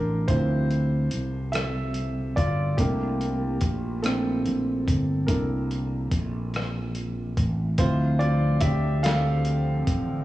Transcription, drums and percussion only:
0.28 kick loud
0.28 closed hi-hat medium
0.71 closed hi-hat soft
1.11 closed hi-hat medium
1.53 cross-stick loud
1.53 closed hi-hat medium
1.94 closed hi-hat soft
2.37 kick medium
2.37 closed hi-hat medium
2.78 kick loud
2.78 closed hi-hat medium
3.21 closed hi-hat soft
3.61 kick medium
3.61 closed hi-hat medium
4.04 cross-stick loud
4.04 closed hi-hat medium
4.45 closed hi-hat soft
4.88 kick medium
4.88 closed hi-hat medium
5.28 kick loud
5.28 closed hi-hat medium
5.71 closed hi-hat soft
6.12 kick medium
6.12 closed hi-hat medium
6.54 cross-stick loud
6.54 closed hi-hat medium
6.95 closed hi-hat soft
7.37 kick medium
7.37 closed hi-hat medium
7.78 kick loud
7.78 closed hi-hat medium
8.20 closed hi-hat soft
8.60 kick medium
8.60 closed hi-hat medium
9.04 snare loud
9.04 closed hi-hat medium
9.45 closed hi-hat medium
9.87 kick medium
9.87 closed hi-hat medium

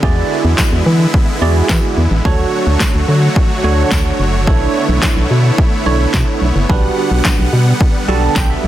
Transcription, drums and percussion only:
0.03 kick loud
0.58 kick loud
0.58 snare loud
0.58 clap loud
0.58 tambourine medium
1.14 kick loud
1.69 kick loud
1.69 snare medium
1.69 clap loud
1.69 tambourine medium
2.25 kick loud
2.80 kick loud
2.80 snare loud
2.80 clap loud
2.80 tambourine medium
3.36 kick loud
3.91 kick loud
3.91 snare medium
3.91 clap loud
3.91 tambourine medium
4.47 kick loud
5.02 kick loud
5.02 snare loud
5.02 clap loud
5.02 tambourine medium
5.58 kick loud
6.14 kick loud
6.14 snare medium
6.14 clap loud
6.14 tambourine medium
6.70 kick loud
7.25 kick loud
7.25 snare loud
7.25 clap loud
7.25 tambourine medium
7.81 kick loud
8.36 kick loud
8.36 snare medium
8.36 clap loud
8.36 tambourine medium

